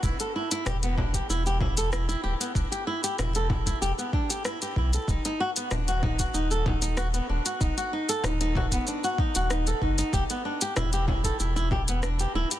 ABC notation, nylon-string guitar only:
X:1
M:4/4
L:1/16
Q:1/4=95
K:Bphr
V:1 name="Nylon-string guitar"
E A E E G B, D G E G E A E E G B, | D G E G E A E E G B, D G E G E A | ^D D F B, =D F ^D F D A D D F B, =D F | ^D F D A D D F B, =D F ^D F D A D D |
G B, D G E G E A E E G B, D G E G |]